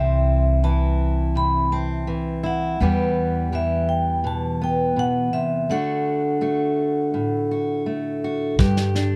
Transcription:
0, 0, Header, 1, 5, 480
1, 0, Start_track
1, 0, Tempo, 722892
1, 1863, Time_signature, 4, 2, 24, 8
1, 6082, End_track
2, 0, Start_track
2, 0, Title_t, "Vibraphone"
2, 0, Program_c, 0, 11
2, 0, Note_on_c, 0, 76, 67
2, 392, Note_off_c, 0, 76, 0
2, 425, Note_on_c, 0, 81, 76
2, 877, Note_off_c, 0, 81, 0
2, 910, Note_on_c, 0, 83, 83
2, 1129, Note_off_c, 0, 83, 0
2, 1144, Note_on_c, 0, 81, 61
2, 1366, Note_off_c, 0, 81, 0
2, 1636, Note_on_c, 0, 78, 67
2, 2358, Note_on_c, 0, 76, 68
2, 2371, Note_off_c, 0, 78, 0
2, 2582, Note_on_c, 0, 79, 72
2, 2598, Note_off_c, 0, 76, 0
2, 2806, Note_off_c, 0, 79, 0
2, 2834, Note_on_c, 0, 81, 82
2, 3076, Note_off_c, 0, 81, 0
2, 3079, Note_on_c, 0, 79, 69
2, 3316, Note_on_c, 0, 78, 81
2, 3318, Note_off_c, 0, 79, 0
2, 3540, Note_on_c, 0, 76, 65
2, 3557, Note_off_c, 0, 78, 0
2, 3789, Note_off_c, 0, 76, 0
2, 3790, Note_on_c, 0, 78, 69
2, 5201, Note_off_c, 0, 78, 0
2, 6082, End_track
3, 0, Start_track
3, 0, Title_t, "Steel-string acoustic guitar"
3, 0, Program_c, 1, 25
3, 0, Note_on_c, 1, 48, 58
3, 0, Note_on_c, 1, 52, 46
3, 0, Note_on_c, 1, 60, 47
3, 0, Note_on_c, 1, 64, 50
3, 419, Note_off_c, 1, 52, 0
3, 421, Note_on_c, 1, 52, 48
3, 423, Note_off_c, 1, 48, 0
3, 423, Note_off_c, 1, 64, 0
3, 426, Note_on_c, 1, 64, 50
3, 898, Note_on_c, 1, 48, 53
3, 1135, Note_off_c, 1, 60, 0
3, 1143, Note_on_c, 1, 60, 46
3, 1368, Note_off_c, 1, 52, 0
3, 1376, Note_on_c, 1, 52, 50
3, 1380, Note_off_c, 1, 48, 0
3, 1608, Note_off_c, 1, 64, 0
3, 1616, Note_on_c, 1, 64, 56
3, 1831, Note_off_c, 1, 52, 0
3, 1834, Note_off_c, 1, 60, 0
3, 1859, Note_off_c, 1, 64, 0
3, 1861, Note_on_c, 1, 40, 59
3, 1866, Note_on_c, 1, 52, 52
3, 1869, Note_on_c, 1, 55, 50
3, 1872, Note_on_c, 1, 59, 52
3, 1877, Note_on_c, 1, 67, 54
3, 2332, Note_off_c, 1, 52, 0
3, 2336, Note_off_c, 1, 67, 0
3, 2340, Note_on_c, 1, 52, 52
3, 2344, Note_on_c, 1, 67, 54
3, 2815, Note_on_c, 1, 47, 52
3, 3056, Note_off_c, 1, 59, 0
3, 3064, Note_on_c, 1, 59, 48
3, 3288, Note_off_c, 1, 47, 0
3, 3296, Note_on_c, 1, 47, 50
3, 3539, Note_off_c, 1, 47, 0
3, 3542, Note_on_c, 1, 48, 52
3, 3754, Note_off_c, 1, 52, 0
3, 3756, Note_off_c, 1, 67, 0
3, 3781, Note_on_c, 1, 50, 60
3, 3783, Note_off_c, 1, 48, 0
3, 3784, Note_off_c, 1, 40, 0
3, 3784, Note_off_c, 1, 59, 0
3, 3786, Note_off_c, 1, 55, 0
3, 3789, Note_on_c, 1, 57, 48
3, 3792, Note_on_c, 1, 62, 52
3, 3796, Note_on_c, 1, 66, 58
3, 4249, Note_off_c, 1, 57, 0
3, 4253, Note_off_c, 1, 66, 0
3, 4257, Note_on_c, 1, 57, 49
3, 4261, Note_on_c, 1, 66, 48
3, 4739, Note_on_c, 1, 45, 52
3, 4981, Note_off_c, 1, 66, 0
3, 4989, Note_on_c, 1, 66, 49
3, 5212, Note_off_c, 1, 57, 0
3, 5220, Note_on_c, 1, 57, 46
3, 5465, Note_off_c, 1, 66, 0
3, 5473, Note_on_c, 1, 66, 51
3, 5673, Note_off_c, 1, 57, 0
3, 5679, Note_off_c, 1, 62, 0
3, 5680, Note_off_c, 1, 66, 0
3, 5701, Note_off_c, 1, 45, 0
3, 5701, Note_on_c, 1, 43, 71
3, 5705, Note_on_c, 1, 67, 67
3, 5946, Note_on_c, 1, 62, 54
3, 6082, Note_off_c, 1, 43, 0
3, 6082, Note_off_c, 1, 50, 0
3, 6082, Note_off_c, 1, 62, 0
3, 6082, Note_off_c, 1, 67, 0
3, 6082, End_track
4, 0, Start_track
4, 0, Title_t, "Upright bass"
4, 0, Program_c, 2, 32
4, 0, Note_on_c, 2, 36, 62
4, 1834, Note_off_c, 2, 36, 0
4, 1864, Note_on_c, 2, 40, 65
4, 3758, Note_off_c, 2, 40, 0
4, 5705, Note_on_c, 2, 43, 73
4, 6082, Note_off_c, 2, 43, 0
4, 6082, End_track
5, 0, Start_track
5, 0, Title_t, "Drums"
5, 5703, Note_on_c, 9, 36, 82
5, 5705, Note_on_c, 9, 38, 27
5, 5769, Note_off_c, 9, 36, 0
5, 5772, Note_off_c, 9, 38, 0
5, 5821, Note_on_c, 9, 38, 27
5, 5887, Note_off_c, 9, 38, 0
5, 5943, Note_on_c, 9, 38, 25
5, 6010, Note_off_c, 9, 38, 0
5, 6082, End_track
0, 0, End_of_file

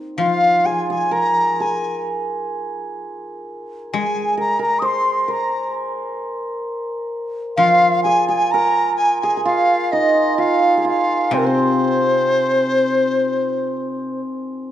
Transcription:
0, 0, Header, 1, 4, 480
1, 0, Start_track
1, 0, Tempo, 946372
1, 94, Time_signature, 4, 2, 24, 8
1, 1533, Tempo, 913242
1, 3933, Tempo, 933126
1, 5853, Tempo, 946372
1, 6813, Tempo, 995025
1, 7538, End_track
2, 0, Start_track
2, 0, Title_t, "Dizi"
2, 0, Program_c, 0, 73
2, 89, Note_on_c, 0, 77, 68
2, 334, Note_on_c, 0, 80, 68
2, 342, Note_off_c, 0, 77, 0
2, 456, Note_off_c, 0, 80, 0
2, 459, Note_on_c, 0, 80, 71
2, 570, Note_on_c, 0, 82, 85
2, 577, Note_off_c, 0, 80, 0
2, 820, Note_on_c, 0, 80, 70
2, 828, Note_off_c, 0, 82, 0
2, 1058, Note_off_c, 0, 80, 0
2, 2009, Note_on_c, 0, 80, 72
2, 2235, Note_off_c, 0, 80, 0
2, 2259, Note_on_c, 0, 82, 73
2, 2369, Note_off_c, 0, 82, 0
2, 2373, Note_on_c, 0, 82, 72
2, 2463, Note_on_c, 0, 87, 63
2, 2471, Note_off_c, 0, 82, 0
2, 2499, Note_on_c, 0, 84, 83
2, 2507, Note_off_c, 0, 87, 0
2, 2694, Note_off_c, 0, 84, 0
2, 2694, Note_on_c, 0, 84, 53
2, 2736, Note_on_c, 0, 82, 69
2, 2744, Note_off_c, 0, 84, 0
2, 2976, Note_off_c, 0, 82, 0
2, 3921, Note_on_c, 0, 77, 97
2, 4148, Note_off_c, 0, 77, 0
2, 4162, Note_on_c, 0, 80, 86
2, 4277, Note_off_c, 0, 80, 0
2, 4290, Note_on_c, 0, 80, 83
2, 4408, Note_on_c, 0, 82, 99
2, 4416, Note_off_c, 0, 80, 0
2, 4637, Note_off_c, 0, 82, 0
2, 4640, Note_on_c, 0, 80, 90
2, 4757, Note_off_c, 0, 80, 0
2, 4768, Note_on_c, 0, 80, 72
2, 4882, Note_off_c, 0, 80, 0
2, 4892, Note_on_c, 0, 77, 86
2, 5133, Note_on_c, 0, 75, 79
2, 5140, Note_off_c, 0, 77, 0
2, 5376, Note_on_c, 0, 77, 80
2, 5383, Note_off_c, 0, 75, 0
2, 5614, Note_off_c, 0, 77, 0
2, 5626, Note_on_c, 0, 77, 72
2, 5862, Note_on_c, 0, 72, 69
2, 5870, Note_off_c, 0, 77, 0
2, 5883, Note_on_c, 0, 70, 57
2, 5891, Note_off_c, 0, 72, 0
2, 5922, Note_on_c, 0, 72, 80
2, 5929, Note_off_c, 0, 70, 0
2, 7292, Note_off_c, 0, 72, 0
2, 7538, End_track
3, 0, Start_track
3, 0, Title_t, "Hammered dulcimer"
3, 0, Program_c, 1, 15
3, 0, Note_on_c, 1, 60, 57
3, 0, Note_on_c, 1, 63, 55
3, 64, Note_off_c, 1, 60, 0
3, 102, Note_on_c, 1, 65, 50
3, 331, Note_on_c, 1, 68, 54
3, 455, Note_off_c, 1, 68, 0
3, 457, Note_on_c, 1, 68, 55
3, 470, Note_off_c, 1, 63, 0
3, 564, Note_on_c, 1, 70, 68
3, 810, Note_off_c, 1, 68, 0
3, 812, Note_on_c, 1, 68, 56
3, 1819, Note_off_c, 1, 65, 0
3, 2012, Note_off_c, 1, 68, 0
3, 2014, Note_on_c, 1, 68, 58
3, 2018, Note_off_c, 1, 70, 0
3, 2244, Note_on_c, 1, 70, 55
3, 2355, Note_off_c, 1, 70, 0
3, 2358, Note_on_c, 1, 70, 62
3, 2478, Note_on_c, 1, 72, 73
3, 2717, Note_off_c, 1, 70, 0
3, 2720, Note_on_c, 1, 70, 56
3, 3612, Note_off_c, 1, 68, 0
3, 3865, Note_off_c, 1, 72, 0
3, 3933, Note_on_c, 1, 65, 67
3, 4170, Note_on_c, 1, 68, 65
3, 4202, Note_off_c, 1, 70, 0
3, 4289, Note_off_c, 1, 68, 0
3, 4291, Note_on_c, 1, 68, 63
3, 4421, Note_on_c, 1, 70, 79
3, 4777, Note_off_c, 1, 68, 0
3, 4779, Note_on_c, 1, 68, 70
3, 4847, Note_off_c, 1, 68, 0
3, 4849, Note_on_c, 1, 68, 53
3, 4891, Note_off_c, 1, 65, 0
3, 4893, Note_on_c, 1, 65, 73
3, 5136, Note_on_c, 1, 63, 66
3, 5367, Note_off_c, 1, 65, 0
3, 5369, Note_on_c, 1, 65, 66
3, 5569, Note_off_c, 1, 68, 0
3, 5571, Note_on_c, 1, 68, 44
3, 5607, Note_off_c, 1, 65, 0
3, 5609, Note_on_c, 1, 65, 61
3, 5858, Note_on_c, 1, 60, 58
3, 5878, Note_off_c, 1, 70, 0
3, 5924, Note_off_c, 1, 60, 0
3, 5926, Note_on_c, 1, 60, 55
3, 6970, Note_off_c, 1, 63, 0
3, 7102, Note_off_c, 1, 68, 0
3, 7294, Note_off_c, 1, 65, 0
3, 7538, Note_off_c, 1, 60, 0
3, 7538, End_track
4, 0, Start_track
4, 0, Title_t, "Guzheng"
4, 0, Program_c, 2, 107
4, 90, Note_on_c, 2, 53, 44
4, 1532, Note_off_c, 2, 53, 0
4, 2013, Note_on_c, 2, 56, 50
4, 3452, Note_off_c, 2, 56, 0
4, 3926, Note_on_c, 2, 53, 47
4, 5369, Note_off_c, 2, 53, 0
4, 5848, Note_on_c, 2, 48, 47
4, 7290, Note_off_c, 2, 48, 0
4, 7538, End_track
0, 0, End_of_file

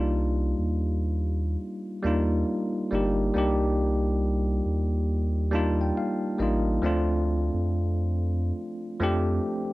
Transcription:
0, 0, Header, 1, 3, 480
1, 0, Start_track
1, 0, Tempo, 869565
1, 1848, Time_signature, 4, 2, 24, 8
1, 5371, End_track
2, 0, Start_track
2, 0, Title_t, "Tine electric piano"
2, 0, Program_c, 0, 4
2, 0, Note_on_c, 0, 55, 76
2, 0, Note_on_c, 0, 58, 69
2, 0, Note_on_c, 0, 62, 73
2, 0, Note_on_c, 0, 63, 70
2, 0, Note_on_c, 0, 65, 94
2, 35, Control_c, 0, 64, 127
2, 592, Note_off_c, 0, 55, 0
2, 595, Note_off_c, 0, 58, 0
2, 598, Note_off_c, 0, 62, 0
2, 601, Note_off_c, 0, 63, 0
2, 604, Note_off_c, 0, 65, 0
2, 1119, Note_on_c, 0, 55, 86
2, 1125, Note_on_c, 0, 58, 81
2, 1131, Note_on_c, 0, 62, 71
2, 1136, Note_on_c, 0, 63, 76
2, 1141, Note_on_c, 0, 65, 88
2, 1472, Note_off_c, 0, 55, 0
2, 1475, Note_off_c, 0, 58, 0
2, 1478, Note_off_c, 0, 62, 0
2, 1480, Note_off_c, 0, 63, 0
2, 1483, Note_off_c, 0, 65, 0
2, 1605, Note_on_c, 0, 55, 75
2, 1612, Note_on_c, 0, 58, 72
2, 1616, Note_on_c, 0, 62, 66
2, 1623, Note_on_c, 0, 63, 67
2, 1627, Note_on_c, 0, 67, 85
2, 1792, Note_off_c, 0, 55, 0
2, 1795, Note_off_c, 0, 58, 0
2, 1797, Note_off_c, 0, 62, 0
2, 1801, Note_off_c, 0, 63, 0
2, 1803, Note_off_c, 0, 67, 0
2, 1843, Note_on_c, 0, 55, 83
2, 1849, Note_on_c, 0, 58, 69
2, 1855, Note_on_c, 0, 62, 73
2, 1861, Note_on_c, 0, 63, 68
2, 1866, Note_on_c, 0, 67, 93
2, 2514, Note_off_c, 0, 55, 0
2, 2517, Note_off_c, 0, 58, 0
2, 2520, Note_off_c, 0, 62, 0
2, 2523, Note_off_c, 0, 63, 0
2, 2526, Note_off_c, 0, 67, 0
2, 3041, Note_on_c, 0, 55, 90
2, 3046, Note_on_c, 0, 58, 74
2, 3052, Note_on_c, 0, 81, 67
2, 3054, Note_on_c, 0, 62, 74
2, 3059, Note_on_c, 0, 63, 76
2, 3063, Note_on_c, 0, 65, 96
2, 3196, Note_off_c, 0, 81, 0
2, 3208, Note_on_c, 0, 79, 56
2, 3284, Note_off_c, 0, 79, 0
2, 3298, Note_on_c, 0, 77, 70
2, 3393, Note_off_c, 0, 55, 0
2, 3396, Note_off_c, 0, 58, 0
2, 3399, Note_off_c, 0, 62, 0
2, 3402, Note_off_c, 0, 63, 0
2, 3404, Note_off_c, 0, 65, 0
2, 3516, Note_off_c, 0, 77, 0
2, 3523, Note_on_c, 0, 55, 71
2, 3529, Note_on_c, 0, 58, 68
2, 3533, Note_on_c, 0, 75, 67
2, 3534, Note_on_c, 0, 62, 69
2, 3539, Note_on_c, 0, 63, 68
2, 3546, Note_on_c, 0, 65, 80
2, 3711, Note_off_c, 0, 55, 0
2, 3714, Note_off_c, 0, 58, 0
2, 3716, Note_off_c, 0, 62, 0
2, 3719, Note_off_c, 0, 63, 0
2, 3722, Note_off_c, 0, 65, 0
2, 3754, Note_off_c, 0, 75, 0
2, 3764, Note_on_c, 0, 53, 84
2, 3770, Note_on_c, 0, 57, 83
2, 3775, Control_c, 0, 64, 0
2, 3775, Note_on_c, 0, 60, 79
2, 3781, Note_on_c, 0, 62, 81
2, 3787, Note_on_c, 0, 65, 90
2, 3885, Control_c, 0, 64, 127
2, 4435, Note_off_c, 0, 53, 0
2, 4438, Note_off_c, 0, 57, 0
2, 4441, Note_off_c, 0, 60, 0
2, 4443, Note_off_c, 0, 62, 0
2, 4446, Note_off_c, 0, 65, 0
2, 4965, Note_on_c, 0, 53, 88
2, 4971, Note_on_c, 0, 57, 79
2, 4976, Note_on_c, 0, 60, 78
2, 4981, Note_on_c, 0, 62, 77
2, 4987, Note_on_c, 0, 67, 104
2, 5217, Note_off_c, 0, 67, 0
2, 5315, Note_off_c, 0, 53, 0
2, 5318, Note_off_c, 0, 57, 0
2, 5321, Note_off_c, 0, 60, 0
2, 5323, Note_off_c, 0, 62, 0
2, 5371, End_track
3, 0, Start_track
3, 0, Title_t, "Sub bass"
3, 0, Program_c, 1, 38
3, 0, Note_on_c, 1, 36, 106
3, 302, Note_off_c, 1, 36, 0
3, 325, Note_on_c, 1, 39, 74
3, 866, Note_off_c, 1, 39, 0
3, 1128, Note_on_c, 1, 39, 95
3, 1347, Note_off_c, 1, 39, 0
3, 1612, Note_on_c, 1, 31, 97
3, 1829, Note_off_c, 1, 31, 0
3, 1850, Note_on_c, 1, 36, 96
3, 2547, Note_off_c, 1, 36, 0
3, 2570, Note_on_c, 1, 39, 88
3, 3267, Note_off_c, 1, 39, 0
3, 3529, Note_on_c, 1, 33, 106
3, 3748, Note_off_c, 1, 33, 0
3, 3767, Note_on_c, 1, 38, 96
3, 4142, Note_off_c, 1, 38, 0
3, 4163, Note_on_c, 1, 41, 93
3, 4705, Note_off_c, 1, 41, 0
3, 4969, Note_on_c, 1, 41, 92
3, 5187, Note_off_c, 1, 41, 0
3, 5371, End_track
0, 0, End_of_file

